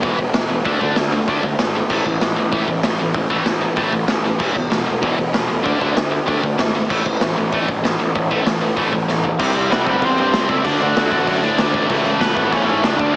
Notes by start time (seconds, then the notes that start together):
0.01 E1 E2 B2 E3, kick, open hi-hat
0.18 E1 E2 B2, kick
0.34 E1 E2 B2, snare, open hi-hat
0.49 E1 E2 B2
0.65 D2 D3 A3 D4, kick, open hi-hat
0.80 D2 D3 A3 D4, kick
0.96 D2 D3 A3, snare, open hi-hat
1.12 D3 A3
1.27 D2 D3 A3 D4, kick, open hi-hat
1.43 D2 D3 A3, kick
1.59 G#1 D3 A3, snare, open hi-hat
1.75 D3 A3
1.90 A1 A2 E3 A3, kick, crash
2.06 A1 A2 E3, kick
2.21 A1 A2 E3, snare, open hi-hat
2.36 A1 A2 E3
2.52 A1 A2 E3 A3, kick, open hi-hat
2.68 A1 A2 E3, kick
2.83 A1 A2 E3, snare, open hi-hat
2.99 A1 A2 E3
3.14 A1 A2 E3, kick, open hi-hat
3.30 A1 A2 E3 A3, kick
3.46 A1 A2 E3, snare, open hi-hat
3.61 A2 E3
3.76 A1 A2 E3 A3, kick, open hi-hat
3.93 A1 A2 E3, kick
4.07 A1 A2 E3, snare, open hi-hat
4.24 A2 E3
4.39 E1 E2 B2 E3, kick, crash
4.54 E1 E2 B2, kick
4.70 E1 E2 B2, snare, open hi-hat
4.86 E1 E2 B2
5.02 E1 E2 B2 E3, kick, open hi-hat
5.17 E1 E2 B2, kick
5.33 E1 E2 B2, snare, open hi-hat
5.48 E1 E2 B2
5.63 D2 D3 A3 D4, kick, open hi-hat
5.79 D2 D3 A3 D4, kick
5.96 D2 D3 A3, snare, open hi-hat
6.11 D3 A3
6.26 D2 D3 A3 D4, kick, open hi-hat
6.43 D2 D3 A3, kick
6.58 G#1 D3 A3, snare, open hi-hat
6.75 D3 A3
6.90 A1 A2 E3 A3, kick, crash
7.06 A1 A2 E3, kick
7.21 A1 A2 E3, snare, open hi-hat
7.37 A1 A2 E3
7.52 A1 A2 E3 A3, kick, open hi-hat
7.68 A1 A2 E3, kick
7.83 A1 A2 E3, snare, open hi-hat
7.99 A1 A2 E3
8.15 A1 A2 E3, kick, open hi-hat
8.31 A1 A2 E3 A3, kick
8.45 A1 A2 E3, snare, open hi-hat
8.62 A2 E3
8.76 A1 A2 E3 A3, kick, open hi-hat
8.92 A1 A2 E3, kick
9.08 A1 A2 E3, snare
9.24 A2 E3, floor tom
9.39 C2 C3 G3 C4, kick, crash
9.54 C2 C3 G3 C4, crash
9.69 C2 C3 G3 B3 C4, snare, crash
9.73 B4
9.84 G1 C3 G3 B3 C4 A4, kick, crash
9.90 B4
10.01 E2 C3 G3 C4 C5, kick, crash
10.17 G2 C3 G3 C4 C5, crash
10.32 C2 C3 G3 C4, snare, crash
10.48 C#2 C3 G3 C4 E4 E5, kick, crash
10.64 D2 D3 A3 D4 D5, kick, crash
10.80 D2 D3 A3 D4 F#4 F#5, crash
10.95 D2 D3 A3 D4, snare, crash
11.11 A1 D3 A3 D4, kick, crash
11.27 F#2 D3 A3 D4, kick, crash
11.42 A2 D3 A3 D4, crash
11.57 D2 D3 A3 D4, snare, crash
11.73 A1 D3 A3 D4, kick, crash
11.89 C#2 A2 E3 A3, kick, crash
12.04 C#2 A2 E3 A3, crash
12.21 C#2 A2 E3 A3 B3 B4, snare, crash
12.35 G#1 A2 E3 A3 B3 B4, kick, crash
12.50 E2 A2 E3 A3 C#4 C#5, kick, crash
12.67 G#2 A2 E3 A3 C#4 C#5, crash
12.83 C#2 A2 E3 A3 D4 D5, snare, crash
12.98 D2 D3 A3 D4, kick, crash